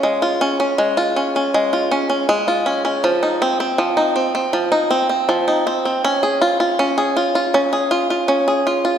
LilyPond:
\new Staff \with { instrumentName = "Five-string banjo" } { \time 4/4 \key des \major \tempo 4 = 80 <aes des' f'>16 f'16 des'16 des'16 aes16 f'16 des'16 des'16 aes16 f'16 des'16 des'16 aes16 f'16 des'16 des'16 | f16 ees'16 c'16 c'16 f16 ees'16 c'16 c'16 f16 ees'16 c'16 c'16 f16 ees'16 c'16 c'16 | des'16 aes'16 f'16 f'16 des'16 aes'16 f'16 f'16 des'16 aes'16 f'16 f'16 des'16 aes'16 f'16 f'16 | }